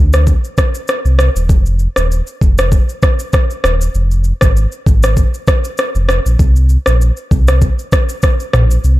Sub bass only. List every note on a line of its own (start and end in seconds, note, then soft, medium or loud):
0.00 0.35 D2 medium
1.05 1.30 C2 medium
1.35 1.51 D#1 medium
1.49 1.88 F1 loud
1.97 2.21 D#1 medium
2.41 2.79 F1 medium
3.64 3.88 D#1 medium
3.94 4.33 F1 loud
4.42 4.67 G#1 medium
4.86 5.24 G#1 medium
5.95 6.20 F1 medium
6.26 6.37 A#1 medium
6.39 6.77 C2 loud
6.87 7.11 A#1 medium
7.31 7.69 C2 loud
8.54 8.78 A#1 loud
8.84 9.00 C2 loud